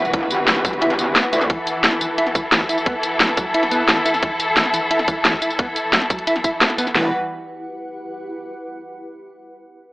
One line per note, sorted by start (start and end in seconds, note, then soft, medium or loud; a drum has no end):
0.00 0.12 E1 loud
0.00 6.91 E3 medium
0.00 6.94 E4 medium
0.00 1.46 F#4 medium
0.00 1.48 B4 medium
0.00 6.95 B4 medium
0.00 6.95 F#5 medium
0.05 tambourine soft
0.13 0.29 E1 loud
0.13 0.20 E3 medium
0.13 kick loud
0.13 closed hi-hat medium
0.31 1.14 G1 loud
0.31 closed hi-hat medium
0.31 tambourine medium
0.48 0.52 F#3 medium
0.48 snare loud
0.48 closed hi-hat medium
0.56 snare soft
0.65 0.72 F#3 medium
0.65 kick loud
0.65 closed hi-hat medium
0.65 tambourine medium
0.73 closed hi-hat soft
0.82 0.89 E4 medium
0.82 closed hi-hat medium
0.90 snare soft
0.90 closed hi-hat soft
0.99 1.06 B3 medium
0.99 closed hi-hat medium
0.99 tambourine medium
1.16 1.20 B3 medium
1.16 snare loud
1.16 closed hi-hat medium
1.24 snare soft
1.33 1.49 D2 loud
1.33 1.40 E4 medium
1.33 closed hi-hat medium
1.33 tambourine medium
1.41 snare soft
1.41 tambourine soft
1.50 1.57 E3 medium
1.50 6.91 E4 medium
1.50 6.93 A4 medium
1.50 kick loud
1.50 closed hi-hat medium
1.67 closed hi-hat medium
1.67 tambourine medium
1.84 1.88 E3 medium
1.84 snare loud
1.84 closed hi-hat medium
1.92 snare soft
2.01 2.05 E3 medium
2.01 closed hi-hat medium
2.01 tambourine medium
2.18 2.25 E4 medium
2.18 closed hi-hat medium
2.27 snare soft
2.27 closed hi-hat soft
2.35 2.39 E3 medium
2.35 kick loud
2.35 closed hi-hat medium
2.35 tambourine medium
2.52 2.62 E3 medium
2.52 snare loud
2.52 closed hi-hat medium
2.61 kick medium
2.69 2.76 E4 medium
2.69 closed hi-hat medium
2.69 tambourine medium
2.78 tambourine soft
2.86 2.93 B3 medium
2.86 kick loud
2.86 closed hi-hat medium
3.03 closed hi-hat medium
3.03 tambourine medium
3.20 3.24 F#3 medium
3.20 snare loud
3.20 closed hi-hat loud
3.29 snare soft
3.37 3.44 F#3 medium
3.37 kick loud
3.37 closed hi-hat medium
3.37 tambourine medium
3.54 3.61 E4 medium
3.54 closed hi-hat medium
3.63 snare soft
3.63 closed hi-hat soft
3.71 3.82 B3 loud
3.71 closed hi-hat medium
3.71 tambourine medium
3.88 3.99 E3 medium
3.88 snare loud
3.88 closed hi-hat medium
3.97 snare soft
4.06 4.12 E4 medium
4.06 closed hi-hat medium
4.06 tambourine medium
4.14 snare soft
4.14 tambourine soft
4.23 4.30 E3 medium
4.23 kick loud
4.23 closed hi-hat loud
4.40 closed hi-hat medium
4.40 tambourine medium
4.57 4.61 E3 medium
4.57 snare loud
4.57 closed hi-hat loud
4.65 snare soft
4.74 4.78 E3 medium
4.74 closed hi-hat medium
4.74 tambourine medium
4.91 4.98 E4 medium
4.91 closed hi-hat loud
4.99 snare soft
4.99 closed hi-hat soft
5.08 5.12 E3 medium
5.08 kick loud
5.08 closed hi-hat medium
5.08 tambourine medium
5.25 5.35 E3 medium
5.25 snare loud
5.25 closed hi-hat loud
5.33 kick medium
5.42 5.49 E4 medium
5.42 closed hi-hat medium
5.42 tambourine medium
5.50 tambourine soft
5.59 5.66 B3 medium
5.59 kick loud
5.59 closed hi-hat loud
5.76 closed hi-hat medium
5.76 tambourine medium
5.93 5.97 F#3 medium
5.93 snare loud
5.93 closed hi-hat loud
6.02 snare soft
6.02 closed hi-hat soft
6.10 6.17 F#3 medium
6.10 kick loud
6.10 closed hi-hat medium
6.10 tambourine medium
6.19 closed hi-hat soft
6.27 6.34 E4 medium
6.27 closed hi-hat loud
6.27 tambourine soft
6.36 snare soft
6.36 closed hi-hat soft
6.44 6.48 E4 loud
6.44 kick medium
6.44 closed hi-hat medium
6.44 tambourine medium
6.61 6.65 B3 medium
6.61 snare loud
6.61 closed hi-hat loud
6.70 snare soft
6.70 closed hi-hat soft
6.78 6.85 B3 loud
6.78 closed hi-hat medium
6.78 tambourine medium
6.87 snare soft
6.87 tambourine soft
6.95 7.11 E1 loud
6.95 7.11 E3 medium
6.95 7.11 G3 medium
6.95 8.28 E4 medium
6.95 7.11 F#4 medium
6.95 7.11 B4 medium
6.95 snare loud
6.95 open hi-hat medium